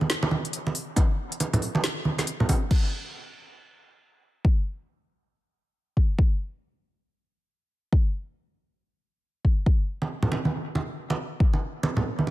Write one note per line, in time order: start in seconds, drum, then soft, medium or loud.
0.01 high conga medium
0.10 snare loud
0.10 closed hi-hat medium
0.23 muted conga medium
0.31 high conga medium
0.45 closed hi-hat medium
0.53 closed hi-hat medium
0.67 muted conga medium
0.75 open hi-hat loud
0.96 kick loud
0.96 closed hi-hat medium
0.96 muted conga medium
1.32 closed hi-hat medium
1.40 closed hi-hat medium
1.40 muted conga medium
1.53 closed hi-hat medium
1.53 low conga medium
1.62 open hi-hat medium
1.75 muted conga medium
1.75 high conga medium
1.84 snare loud
1.84 closed hi-hat medium
2.05 high conga medium
2.18 snare soft
2.18 closed hi-hat medium
2.18 muted conga medium
2.27 closed hi-hat medium
2.40 low conga medium
2.49 kick medium
2.49 open hi-hat loud
2.49 muted conga medium
2.71 kick loud
2.71 crash medium
4.45 kick loud
5.97 kick medium
6.19 kick loud
7.93 kick loud
9.45 kick medium
9.66 kick loud
10.02 muted conga soft
10.23 low conga medium
10.32 muted conga medium
10.45 high conga medium
10.75 muted conga soft
10.75 high conga medium
11.10 muted conga medium
11.40 kick loud
11.53 muted conga medium
11.83 muted conga medium
11.97 low conga medium
12.19 high conga medium
12.27 muted conga soft